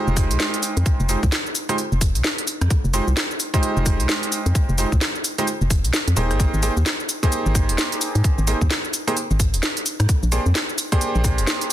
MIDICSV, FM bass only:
0, 0, Header, 1, 2, 480
1, 0, Start_track
1, 0, Tempo, 461538
1, 892, Time_signature, 4, 2, 24, 8
1, 12198, End_track
2, 0, Start_track
2, 0, Title_t, "FM bass"
2, 0, Program_c, 0, 39
2, 77, Note_on_c, 0, 29, 95
2, 318, Note_on_c, 0, 36, 104
2, 333, Note_off_c, 0, 29, 0
2, 389, Note_off_c, 0, 36, 0
2, 799, Note_on_c, 0, 41, 86
2, 869, Note_off_c, 0, 41, 0
2, 1038, Note_on_c, 0, 29, 103
2, 1207, Note_off_c, 0, 29, 0
2, 1279, Note_on_c, 0, 36, 109
2, 1350, Note_off_c, 0, 36, 0
2, 1997, Note_on_c, 0, 29, 90
2, 2238, Note_on_c, 0, 36, 102
2, 2254, Note_off_c, 0, 29, 0
2, 2309, Note_off_c, 0, 36, 0
2, 2718, Note_on_c, 0, 41, 86
2, 2789, Note_off_c, 0, 41, 0
2, 2958, Note_on_c, 0, 29, 99
2, 3126, Note_off_c, 0, 29, 0
2, 3197, Note_on_c, 0, 36, 102
2, 3269, Note_off_c, 0, 36, 0
2, 3918, Note_on_c, 0, 29, 90
2, 4158, Note_on_c, 0, 36, 99
2, 4174, Note_off_c, 0, 29, 0
2, 4229, Note_off_c, 0, 36, 0
2, 4638, Note_on_c, 0, 41, 82
2, 4709, Note_off_c, 0, 41, 0
2, 4878, Note_on_c, 0, 29, 99
2, 5046, Note_off_c, 0, 29, 0
2, 5119, Note_on_c, 0, 36, 105
2, 5190, Note_off_c, 0, 36, 0
2, 5837, Note_on_c, 0, 29, 87
2, 6078, Note_on_c, 0, 36, 103
2, 6094, Note_off_c, 0, 29, 0
2, 6149, Note_off_c, 0, 36, 0
2, 6318, Note_on_c, 0, 41, 88
2, 6389, Note_off_c, 0, 41, 0
2, 6412, Note_on_c, 0, 27, 100
2, 6559, Note_on_c, 0, 32, 102
2, 6574, Note_off_c, 0, 27, 0
2, 6727, Note_off_c, 0, 32, 0
2, 6798, Note_on_c, 0, 32, 100
2, 6967, Note_off_c, 0, 32, 0
2, 7038, Note_on_c, 0, 39, 99
2, 7109, Note_off_c, 0, 39, 0
2, 7758, Note_on_c, 0, 32, 91
2, 7998, Note_on_c, 0, 27, 101
2, 8014, Note_off_c, 0, 32, 0
2, 8069, Note_off_c, 0, 27, 0
2, 8478, Note_on_c, 0, 44, 82
2, 8549, Note_off_c, 0, 44, 0
2, 8718, Note_on_c, 0, 32, 104
2, 8887, Note_off_c, 0, 32, 0
2, 8958, Note_on_c, 0, 39, 104
2, 9029, Note_off_c, 0, 39, 0
2, 9679, Note_on_c, 0, 32, 91
2, 9919, Note_on_c, 0, 27, 107
2, 9935, Note_off_c, 0, 32, 0
2, 9990, Note_off_c, 0, 27, 0
2, 10398, Note_on_c, 0, 44, 88
2, 10469, Note_off_c, 0, 44, 0
2, 10638, Note_on_c, 0, 34, 98
2, 10806, Note_off_c, 0, 34, 0
2, 10877, Note_on_c, 0, 41, 104
2, 10949, Note_off_c, 0, 41, 0
2, 11600, Note_on_c, 0, 34, 86
2, 11838, Note_on_c, 0, 29, 100
2, 11854, Note_off_c, 0, 34, 0
2, 11909, Note_off_c, 0, 29, 0
2, 12198, End_track
0, 0, End_of_file